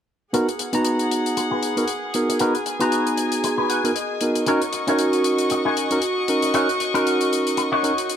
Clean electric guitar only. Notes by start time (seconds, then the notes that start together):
0.33 F#4 G#4 B4
0.59 muted clean electric guitar stroke
0.73 F#4 G#4 B4
1.37 muted clean electric guitar stroke
1.51 F#4 G#4 B4
2.29 muted clean electric guitar stroke
2.40 F#4 G#4 B4
2.66 muted clean electric guitar stroke
2.80 F#4 G#4 B4
3.44 muted clean electric guitar stroke
3.58 F#4 G#4 B4
3.70 F#5
3.95 D#5
4.36 muted clean electric guitar stroke
4.47 D#4 F#4 C#5
4.73 muted clean electric guitar stroke
4.88 D#4 F#4 C#5
5.51 muted clean electric guitar stroke
5.65 D#4 F#4 G#4
6.43 muted clean electric guitar stroke
6.54 D#4 F#4 C#5
6.80 muted clean electric guitar stroke
6.94 D#4 F#4 A#4
7.57 muted clean electric guitar stroke
7.72 D#4 F#4 C#5